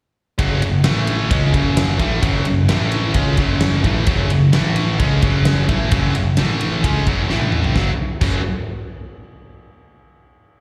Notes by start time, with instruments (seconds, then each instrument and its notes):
0.39 picked electric bass F#1, distorted electric guitar F#2 C#3 F#3, kick, ride
0.61 picked electric bass F#1, distorted electric guitar F#2 C#3, ride
0.84 picked electric bass A1, distorted electric guitar A2 E3 A3, snare, ride
1.07 ride
1.30 picked electric bass C#2, distorted electric guitar C#3 G#3 C#4, kick, ride
1.53 picked electric bass F#1, distorted electric guitar F#2 C#3 F#3, kick, ride
1.77 snare, ride
1.99 picked electric bass A1, distorted electric guitar A2 E3 A3, kick, ride
2.21 picked electric bass F#1, distorted electric guitar F#2 C#3 F#3, kick, ride
2.45 picked electric bass F#1, distorted electric guitar F#2 C#3, ride
2.69 picked electric bass A1, distorted electric guitar A2 E3 A3, snare, ride
2.92 ride
3.14 picked electric bass C#2, distorted electric guitar C#3 G#3 C#4, kick, ride
3.36 picked electric bass F#1, distorted electric guitar F#2 C#3 F#3, kick, ride
3.61 snare, ride
3.84 picked electric bass A1, distorted electric guitar A2 E3 A3, kick, ride
4.06 picked electric bass F#1, distorted electric guitar F#2 C#3 F#3, kick, ride
4.30 picked electric bass F#1, distorted electric guitar F#2 C#3, ride
4.52 picked electric bass A1, distorted electric guitar A2 E3 A3, snare, ride
4.76 ride
4.99 picked electric bass C#2, distorted electric guitar C#3 G#3 C#4, kick, ride
5.22 picked electric bass F#1, distorted electric guitar F#2 C#3 F#3, kick, ride
5.45 snare, ride
5.69 picked electric bass A1, distorted electric guitar A2 E3 A3, kick, ride
5.91 picked electric bass F#1, distorted electric guitar F#2 C#3 F#3, kick, ride
6.15 picked electric bass F#1, distorted electric guitar F#2 C#3, ride
6.37 picked electric bass A1, distorted electric guitar A2 E3 A3, snare, ride
6.61 ride
6.84 picked electric bass C#2, distorted electric guitar C#3 G#3 C#4, kick, ride
7.07 picked electric bass F#1, distorted electric guitar F#2 C#3 F#3, kick, ride
7.30 picked electric bass A1, distorted electric guitar A2 E3 A3, snare
7.41 high tom
7.52 mid tom
7.64 floor tom
7.75 picked electric bass F#1, distorted electric guitar F#2 C#3 F#3, kick, snare
8.21 picked electric bass F#1, distorted electric guitar F#2 C#3 F#3, kick, crash